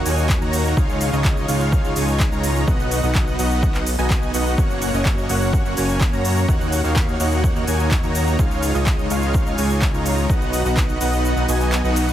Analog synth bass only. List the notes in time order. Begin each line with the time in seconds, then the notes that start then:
0.05 D#2
0.41 D#2
0.77 C#2
1.13 C#2
1.48 C#2
1.84 C#2
1.96 C#2
2.32 C#2
2.68 B1
3.03 B1
3.39 B1
3.75 B1
3.98 B1
4.34 B1
4.58 F#1
4.94 F#1
5.29 F#1
5.65 F#1
5.77 F#1
6.13 F#2
6.48 D#2
6.84 D#2
7.20 D#2
7.56 D#2
7.67 D#2
8.03 D#2
8.39 C#2
8.75 C#2
9.10 C#2
9.46 C#2
9.58 C#2
9.94 C#2
10.29 B1
10.65 B1
11.01 B1
11.36 B1
11.48 B1
11.84 B1